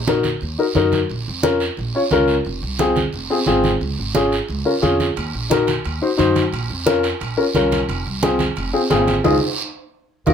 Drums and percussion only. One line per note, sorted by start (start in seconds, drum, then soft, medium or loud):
0.07 high conga medium
0.07 short guiro medium
0.23 high conga medium
0.23 short guiro medium
0.41 high conga soft
0.41 long guiro medium
0.75 high conga medium
0.75 short guiro medium
0.92 high conga medium
0.92 short guiro medium
1.10 long guiro medium
1.27 high conga soft
1.43 high conga medium
1.43 short guiro medium
1.60 short guiro medium
1.77 high conga soft
1.77 long guiro medium
2.11 high conga medium
2.11 short guiro medium
2.28 short guiro medium
2.45 long guiro medium
2.62 high conga soft
2.79 high conga medium
2.79 short guiro medium
2.96 high conga medium
2.96 short guiro medium
3.13 high conga soft
3.13 long guiro medium
3.46 high conga medium
3.46 short guiro medium
3.64 high conga medium
3.64 short guiro medium
3.81 long guiro medium
3.98 high conga soft
4.15 high conga medium
4.15 short guiro medium
4.32 short guiro medium
4.49 high conga soft
4.49 long guiro medium
4.83 high conga medium
4.83 short guiro medium
5.00 high conga medium
5.00 short guiro medium
5.16 high timbale medium
5.16 long guiro medium
5.35 high conga soft
5.51 high conga medium
5.51 high timbale medium
5.51 short guiro medium
5.67 high conga medium
5.67 high timbale medium
5.67 short guiro medium
5.84 high conga soft
5.84 high timbale medium
5.84 long guiro medium
6.18 high conga medium
6.18 high timbale medium
6.18 short guiro medium
6.36 high conga medium
6.36 high timbale medium
6.36 short guiro medium
6.53 high timbale medium
6.53 long guiro medium
6.70 high conga soft
6.87 high conga medium
6.87 high timbale medium
6.87 short guiro medium
7.03 high timbale medium
7.03 short guiro medium
7.20 high conga soft
7.20 high timbale medium
7.20 long guiro medium
7.55 high conga medium
7.55 high timbale medium
7.55 short guiro medium
7.72 high conga medium
7.72 high timbale medium
7.72 short guiro medium
7.89 high timbale medium
7.89 long guiro medium
8.06 high conga soft
8.22 high conga medium
8.22 high timbale medium
8.22 short guiro medium
8.39 high conga medium
8.39 high timbale medium
8.39 short guiro medium
8.56 high conga soft
8.56 high timbale medium
8.56 long guiro medium
8.90 high conga medium
8.90 high timbale medium
8.90 low timbale medium
8.90 short guiro medium
9.08 high conga medium
9.08 high timbale medium
9.08 short guiro medium
9.24 high conga medium
9.24 high timbale medium
9.24 long guiro medium
10.26 high conga medium
10.26 high timbale medium
10.26 long guiro medium